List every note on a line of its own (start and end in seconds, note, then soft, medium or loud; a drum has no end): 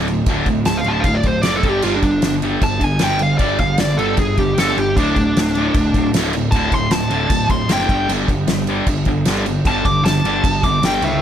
0.00 0.20 D1 medium
0.08 0.26 D2 medium
0.08 0.26 A2 medium
0.08 crash medium
0.26 0.43 D1 loud
0.26 0.47 D2 medium
0.26 0.47 A2 medium
0.26 0.47 D3 medium
0.26 kick loud
0.26 crash medium
0.46 0.63 D1 medium
0.46 0.66 D2 medium
0.46 0.66 A2 medium
0.46 kick medium
0.46 crash medium
0.65 0.83 D1 medium
0.65 0.85 D2 medium
0.65 0.85 A2 medium
0.65 0.79 A5 medium
0.65 snare loud
0.65 crash medium
0.77 0.91 F5 medium
0.84 1.02 D1 medium
0.84 1.05 D2 medium
0.84 1.05 A2 medium
0.84 1.05 D3 loud
0.84 1.03 A5 medium
0.84 crash medium
1.00 1.21 D1 loud
1.00 1.16 F5 medium
1.00 crash medium
1.04 1.24 D2 medium
1.04 1.24 A2 medium
1.04 kick loud
1.15 1.27 D5 medium
1.23 1.41 D1 loud
1.23 1.43 D2 medium
1.23 1.43 A2 medium
1.23 kick medium
1.23 crash medium
1.28 1.42 C5 medium
1.42 1.60 F#1 medium
1.42 1.63 D2 loud
1.42 1.63 A2 loud
1.42 1.64 D3 loud
1.42 1.56 D5 medium
1.42 snare loud
1.42 crash medium
1.56 1.69 A4 medium
1.63 1.80 G1 medium
1.63 1.83 G2 medium
1.63 1.83 D3 medium
1.63 1.83 G3 medium
1.63 kick loud
1.63 crash medium
1.69 1.83 G4 medium
1.82 2.01 G1 loud
1.82 2.02 G2 medium
1.82 2.03 D3 loud
1.82 2.03 G3 loud
1.82 1.96 F4 medium
1.82 crash medium
1.96 2.34 D4 loud
2.02 2.19 G1 medium
2.02 2.21 G2 medium
2.02 2.21 D3 medium
2.02 kick medium
2.02 crash medium
2.22 2.56 G1 loud
2.22 2.41 G2 medium
2.22 2.41 D3 medium
2.22 snare loud
2.22 crash medium
2.42 2.61 G2 loud
2.42 2.61 D3 loud
2.42 2.62 G3 loud
2.42 crash medium
2.62 2.78 G1 loud
2.62 2.78 G2 medium
2.62 2.79 D3 medium
2.62 2.84 A5 loud
2.62 kick loud
2.62 crash medium
2.80 2.98 G1 loud
2.80 2.98 G2 medium
2.80 2.99 D3 medium
2.80 kick medium
2.80 crash medium
2.84 3.03 G#5 medium
2.99 3.34 G1 medium
2.99 3.19 G2 medium
2.99 3.19 D3 loud
2.99 3.20 G3 loud
2.99 snare loud
2.99 crash loud
3.03 3.21 G5 medium
3.19 3.38 G2 medium
3.19 3.38 D3 medium
3.19 3.38 F5 medium
3.19 crash medium
3.38 3.56 G1 medium
3.38 3.58 G2 medium
3.38 3.59 D3 medium
3.38 3.59 G3 loud
3.38 3.58 D5 loud
3.38 kick loud
3.38 crash medium
3.59 3.76 G1 medium
3.59 3.78 G2 medium
3.59 3.78 D3 medium
3.59 3.79 F5 medium
3.59 kick medium
3.59 crash medium
3.78 3.95 G1 loud
3.78 3.97 G2 medium
3.78 3.97 D3 medium
3.78 3.98 D5 medium
3.78 snare loud
3.78 crash medium
3.97 4.15 G1 medium
3.97 4.17 G2 medium
3.97 4.17 D3 loud
3.97 4.18 G3 loud
3.97 4.17 A4 medium
3.97 crash medium
4.17 4.34 G1 loud
4.17 4.36 G2 medium
4.17 4.36 D3 medium
4.17 4.38 G#4 medium
4.17 kick loud
4.17 crash medium
4.37 4.54 G1 loud
4.37 4.56 G2 medium
4.37 4.56 D3 medium
4.37 4.59 G4 loud
4.37 kick medium
4.37 crash medium
4.57 4.74 G1 medium
4.57 4.76 G2 medium
4.57 4.76 D3 medium
4.57 4.77 G3 loud
4.57 4.77 A4 medium
4.57 snare loud
4.57 crash medium
4.77 4.97 G1 medium
4.77 4.95 G2 medium
4.77 4.96 D3 medium
4.77 4.97 G4 loud
4.77 crash medium
4.96 5.13 D1 medium
4.96 5.16 D2 medium
4.96 5.16 A2 medium
4.96 5.16 D3 loud
4.96 6.10 D4 loud
4.96 kick loud
4.96 crash medium
5.16 5.32 D1 medium
5.16 5.35 D2 medium
5.16 5.35 A2 medium
5.16 kick medium
5.16 crash medium
5.36 5.69 D1 loud
5.36 5.54 D2 medium
5.36 5.55 A2 medium
5.36 snare loud
5.36 crash medium
5.55 5.75 D2 loud
5.55 5.75 A2 loud
5.55 5.75 D3 loud
5.55 crash medium
5.74 5.91 D1 loud
5.74 5.93 D2 medium
5.74 5.94 A2 medium
5.74 kick loud
5.74 crash medium
5.94 6.10 D1 loud
5.94 6.13 D2 medium
5.94 6.13 A2 medium
5.94 kick medium
5.94 crash medium
6.14 6.46 D1 medium
6.14 6.34 D2 medium
6.14 6.34 A2 loud
6.14 6.34 D3 loud
6.14 snare loud
6.14 crash loud
6.33 6.52 D2 medium
6.33 6.52 A2 medium
6.33 crash medium
6.51 6.69 D1 loud
6.51 6.71 D2 loud
6.51 6.72 A2 medium
6.51 6.74 A5 loud
6.51 kick loud
6.51 crash medium
6.55 6.72 D3 loud
6.71 6.88 D1 medium
6.71 6.90 D2 medium
6.71 6.90 A2 medium
6.71 6.92 C6 loud
6.71 kick medium
6.71 crash medium
6.90 7.07 D1 loud
6.90 7.09 D2 medium
6.90 7.09 A2 medium
6.90 7.49 A5 medium
6.90 snare loud
6.90 crash medium
7.10 7.27 D1 medium
7.10 7.29 D2 medium
7.10 7.29 A2 loud
7.10 7.30 D3 loud
7.10 crash medium
7.29 7.46 D1 loud
7.29 7.47 D2 medium
7.29 7.48 A2 medium
7.29 kick loud
7.29 crash medium
7.48 7.66 D1 loud
7.48 7.67 D2 medium
7.48 7.67 A2 medium
7.48 7.70 C6 medium
7.48 kick medium
7.48 crash medium
7.69 7.86 F#1 medium
7.69 7.88 D2 medium
7.69 7.88 A2 loud
7.69 7.88 D3 loud
7.69 8.09 G5 loud
7.69 snare loud
7.69 crash medium
7.89 8.05 G1 loud
7.89 8.08 G2 medium
7.89 8.08 D3 loud
7.89 8.08 G3 loud
7.89 kick loud
7.89 crash medium
8.09 8.25 G1 loud
8.09 8.27 G2 medium
8.09 8.28 D3 medium
8.09 8.28 G3 medium
8.09 crash medium
8.28 8.45 G1 medium
8.28 8.46 G2 medium
8.28 8.46 D3 medium
8.28 kick medium
8.28 crash medium
8.47 8.80 G1 loud
8.47 8.65 G2 medium
8.47 8.65 D3 medium
8.47 snare loud
8.47 crash medium
8.67 8.87 G2 loud
8.67 8.87 D3 loud
8.67 8.87 G3 loud
8.67 crash medium
8.87 9.03 G1 loud
8.87 9.05 G2 medium
8.87 9.06 D3 medium
8.87 kick loud
8.87 crash medium
9.05 9.23 G1 loud
9.05 9.25 G2 medium
9.05 9.25 D3 loud
9.05 kick medium
9.05 crash medium
9.25 9.59 G1 medium
9.25 9.45 G2 loud
9.25 9.46 D3 loud
9.25 9.46 G3 loud
9.25 snare loud
9.25 crash loud
9.46 9.64 G2 medium
9.46 9.64 D3 medium
9.46 crash medium
9.65 9.82 G1 loud
9.65 9.85 G2 loud
9.65 9.85 D3 loud
9.65 9.85 G3 loud
9.65 9.85 A5 loud
9.65 kick loud
9.65 crash medium
9.85 10.01 G1 loud
9.85 10.03 G2 medium
9.85 10.03 D3 medium
9.85 10.04 D6 loud
9.85 kick medium
9.85 crash medium
10.03 10.20 G1 loud
10.03 10.23 G2 medium
10.03 10.23 D3 medium
10.03 10.62 A5 loud
10.03 snare loud
10.03 crash medium
10.23 10.40 G1 medium
10.23 10.43 G2 loud
10.23 10.43 D3 loud
10.23 10.44 G3 loud
10.23 crash medium
10.44 10.60 G1 loud
10.44 10.62 G2 medium
10.44 10.62 D3 medium
10.44 kick loud
10.44 crash medium
10.63 10.80 G1 loud
10.63 10.81 G2 medium
10.63 10.82 D3 medium
10.63 10.82 D6 medium
10.63 kick medium
10.63 crash medium
10.81 10.98 G1 medium
10.81 11.02 G2 medium
10.81 11.01 D3 loud
10.81 11.22 G5 loud
10.81 snare loud
10.81 crash medium
10.86 11.03 G3 loud
11.02 11.18 C#2 loud
11.02 11.20 G2 medium
11.02 11.20 D3 medium
11.02 11.21 E4 medium
11.02 11.22 E5 loud
11.02 crash medium